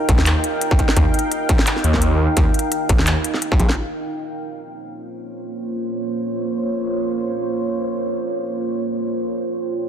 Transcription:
Already playing: ambient pad D#4 A#4 F5 G5
0.09 detuned saw bass A#1, kick, closed hi-hat
0.18 detuned saw bass D#2, snare
0.26 clap, closed hi-hat
0.44 closed hi-hat
0.61 closed hi-hat
0.71 kick
0.79 kick, closed hi-hat
0.89 snare
0.97 detuned saw bass D#2, kick, closed hi-hat
1.14 closed hi-hat
1.19 closed hi-hat
1.32 closed hi-hat
1.49 kick, closed hi-hat
1.59 snare
1.67 clap, closed hi-hat
1.76 snare
1.84 detuned saw bass D#2, closed hi-hat
1.94 kick, snare
2.02 closed hi-hat
2.37 detuned saw bass D#2, kick, closed hi-hat
2.54 closed hi-hat
2.59 closed hi-hat
2.72 closed hi-hat
2.89 detuned saw bass A#1, kick, closed hi-hat
2.99 detuned saw bass D#2, snare
3.07 clap, closed hi-hat
3.24 closed hi-hat
3.34 snare
3.42 closed hi-hat
3.52 kick
3.59 detuned saw bass A#1, kick, closed hi-hat
3.69 snare
3.77 ambient pad A#3 F4 C5 C#5
9.38 ambient pad D#4 A#4 F5 G5

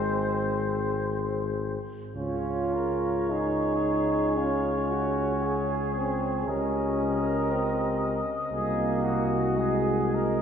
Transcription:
Already playing: tuba G#1, trombone G#3, flugelhorn C4, euphonium G#4, cornet C5
2.14 tuba C#2, flugelhorn C#4, trombone F4, euphonium G#4, cornet C#5
2.74 flugelhorn A#4
3.30 trombone D#4, flugelhorn G#4
4.38 trombone C#4, flugelhorn F4
4.91 flugelhorn F#4
5.42 flugelhorn G#4
5.96 trombone C4
6.48 tuba C#2, trombone C#4, euphonium G4, flugelhorn A#4, cornet D#5
7.00 flugelhorn A#4
7.52 trombone C4
8.52 tuba C2, trombone A#3, euphonium F#4, flugelhorn G#4
9.03 flugelhorn F#4
9.57 trombone G#3, flugelhorn G#4
10.15 flugelhorn A#4

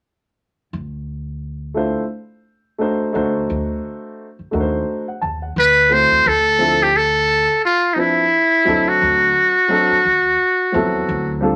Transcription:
0.73 upright bass D2
1.74 grand piano A3 D4 E4 F4 C5
2.78 grand piano A3 D4 D#4 F#4 C5
3.13 upright bass D2, grand piano A3 D4 D#4 F#4 C5
3.50 upright bass D2
4.39 muted upright bass stroke
4.51 upright bass D#2, grand piano A3 D4 D#4 F#4 A#4
4.60 grand piano C5
5.08 grand piano F#5
5.21 upright bass D#2, grand piano A5
5.42 grand piano F#5
5.56 upright bass D2, muted trumpet B4
5.89 grand piano A3 C4 E4 F#4 C5, muted trumpet C5
6.11 upright bass D#2
6.25 upright bass D2, muted trumpet A4
6.58 grand piano F3 C4 D4 E4 A4
6.83 muted trumpet G4
6.96 muted trumpet A4
7.65 muted trumpet F4
7.94 grand piano F3 C4 D4, muted trumpet D#4
7.98 grand piano E4 B4, muted trumpet E4
8.65 upright bass D2, grand piano F#3 C4 D4 D#4 A4
8.88 muted trumpet F#4
9.02 upright bass D2
9.68 grand piano F#3 C4 D4 D#4 A4
9.91 muted upright bass stroke
10.05 upright bass D#2
10.72 upright bass D#2, grand piano F3 B3 C4 E4 A4
10.78 grand piano F#3
11.09 upright bass D2
11.41 grand piano G3 C4 D4 F4 A4

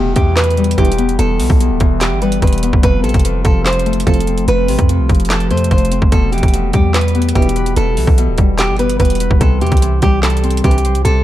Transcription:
Already playing: 808-style bass E1, harp E2 B2 A3, ambient pad E3 G3 B3 G4, nylon-string guitar G4
0.16 808-style bass E2, harp E3, nylon-string guitar G4, kick, closed hi-hat
0.36 nylon-string guitar B4, snare, clap, closed hi-hat
0.44 closed hi-hat
0.51 closed hi-hat
0.57 harp G3, closed hi-hat
0.64 closed hi-hat
0.71 closed hi-hat
0.78 808-style bass E1, brass ensemble B1 G2 E3, harp E2, nylon-string guitar G4, kick, closed hi-hat
0.85 closed hi-hat
0.92 closed hi-hat
0.98 harp B3, closed hi-hat
1.09 closed hi-hat
1.19 808-style bass E1, harp E2, nylon-string guitar A4, closed hi-hat
1.39 808-style bass B1, harp B2, open hi-hat
1.50 808-style bass B1, kick
1.60 harp E2, closed hi-hat
1.70 808-style bass D1
1.80 808-style bass E1, harp E3, kick, closed hi-hat
2.01 nylon-string guitar G4, snare, clap, closed hi-hat
2.11 808-style bass G1
2.22 harp G3, nylon-string guitar B4, closed hi-hat
2.32 closed hi-hat
2.42 808-style bass E1, harp E2, nylon-string guitar B4, kick, closed hi-hat
2.47 closed hi-hat
2.53 closed hi-hat
2.58 closed hi-hat
2.63 harp B3, closed hi-hat
2.73 808-style bass E1, kick
2.83 808-style bass F1, harp F2, ambient pad F3 A3 C4 A4, nylon-string guitar B4, kick, closed hi-hat
3.04 808-style bass A1, harp C3, nylon-string guitar A4, closed hi-hat
3.09 closed hi-hat
3.14 808-style bass F1, kick, closed hi-hat
3.19 closed hi-hat
3.24 harp F2, closed hi-hat
3.45 808-style bass F1, harp F3, nylon-string guitar A4, kick, closed hi-hat
3.65 nylon-string guitar C5, snare, clap, closed hi-hat
3.73 closed hi-hat
3.79 closed hi-hat
3.86 harp A3, closed hi-hat
3.93 closed hi-hat
4.00 closed hi-hat
4.07 808-style bass F1, brass ensemble C2 A2 F3, harp F2, nylon-string guitar A4, kick, closed hi-hat
4.14 closed hi-hat
4.20 closed hi-hat
4.27 808-style bass E1, harp C4, closed hi-hat
4.38 808-style bass F1, closed hi-hat
4.48 808-style bass F1, harp F2, nylon-string guitar B4, closed hi-hat
4.68 808-style bass A1, harp C3, closed hi-hat, open hi-hat
4.79 808-style bass F2, kick, closed hi-hat
4.89 harp F2, closed hi-hat
4.99 808-style bass C2
5.09 808-style bass F1, harp F3, kick, closed hi-hat
5.15 closed hi-hat
5.20 closed hi-hat
5.25 closed hi-hat
5.30 nylon-string guitar A4, snare, clap, closed hi-hat
5.40 closed hi-hat
5.51 808-style bass F2, harp A3, nylon-string guitar C5, closed hi-hat
5.57 closed hi-hat
5.64 closed hi-hat
5.71 808-style bass F1, harp F2, nylon-string guitar C5, kick, closed hi-hat
5.78 closed hi-hat
5.85 closed hi-hat
5.92 harp C4, closed hi-hat
6.02 808-style bass F1, kick
6.12 808-style bass E1, harp B2, ambient pad E3 G3 B3 G4, nylon-string guitar A4, kick, closed hi-hat
6.32 harp E3, nylon-string guitar G4, closed hi-hat
6.38 closed hi-hat
6.43 808-style bass E1, kick, closed hi-hat
6.48 closed hi-hat
6.53 harp B2, closed hi-hat
6.73 808-style bass E2, harp G3, nylon-string guitar G4, kick, closed hi-hat
6.94 nylon-string guitar B4, snare, clap, closed hi-hat
7.01 closed hi-hat
7.08 closed hi-hat
7.15 harp B3, closed hi-hat
7.22 closed hi-hat
7.29 closed hi-hat
7.35 808-style bass E1, brass ensemble B1 G2 E3, harp B2, nylon-string guitar G4, kick, closed hi-hat
7.42 closed hi-hat
7.49 closed hi-hat
7.56 harp B4, closed hi-hat
7.66 closed hi-hat
7.76 808-style bass E1, harp B2, nylon-string guitar A4, closed hi-hat
7.97 808-style bass B1, harp E3, open hi-hat
8.07 808-style bass B1, kick
8.18 harp B2, closed hi-hat
8.28 808-style bass D1
8.38 808-style bass E1, harp G3, kick, closed hi-hat
8.58 nylon-string guitar G4, snare, clap, closed hi-hat
8.69 808-style bass G1
8.79 harp B3, nylon-string guitar B4, closed hi-hat
8.89 closed hi-hat
8.99 808-style bass E1, harp B2, nylon-string guitar B4, kick, closed hi-hat
9.05 closed hi-hat
9.10 closed hi-hat
9.15 closed hi-hat
9.20 harp B4, closed hi-hat
9.31 808-style bass E1, kick
9.41 808-style bass C2, harp C3, ambient pad C4, nylon-string guitar A4, kick, closed hi-hat
9.61 808-style bass E2, harp E3, nylon-string guitar G4, closed hi-hat
9.67 closed hi-hat
9.72 808-style bass C2, kick, closed hi-hat
9.77 closed hi-hat
9.82 harp C3, closed hi-hat
10.02 808-style bass C2, harp G3, nylon-string guitar G4, kick, closed hi-hat
10.23 nylon-string guitar A4, snare, clap, closed hi-hat
10.30 closed hi-hat
10.37 closed hi-hat
10.44 harp C4, closed hi-hat
10.51 closed hi-hat
10.57 closed hi-hat
10.64 brass ensemble C2 G2 E3, 808-style bass C2, harp C3, nylon-string guitar G4, kick, closed hi-hat
10.71 closed hi-hat
10.78 closed hi-hat
10.85 808-style bass B1, harp C5, closed hi-hat
10.95 808-style bass C2, closed hi-hat
11.05 808-style bass C2, harp C3, nylon-string guitar A4, closed hi-hat

